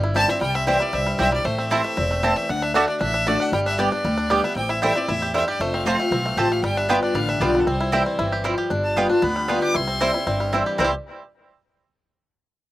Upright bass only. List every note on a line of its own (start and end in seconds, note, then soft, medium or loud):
0.00 0.24 G1 loud
0.41 0.76 C2 medium
0.93 1.15 C2 medium
1.19 1.41 B1 medium
1.45 1.79 A1 medium
1.98 2.32 E1 medium
2.49 2.83 D2 medium
3.01 3.35 A1 medium
3.52 3.87 G1 medium
4.04 4.39 D2 medium
4.55 4.90 A1 medium
5.08 5.42 E2 medium
5.60 5.94 F1 medium
6.11 6.33 B1 medium
6.37 6.59 A1 medium
6.63 6.97 G1 medium
7.14 7.37 A1 medium
7.40 7.62 B1 medium
7.67 8.01 C2 medium
8.19 8.53 G1 medium
8.70 9.05 G1 medium
9.22 9.57 D2 medium
9.75 10.09 C2 medium
10.27 10.61 G1 medium
10.79 10.91 C2 medium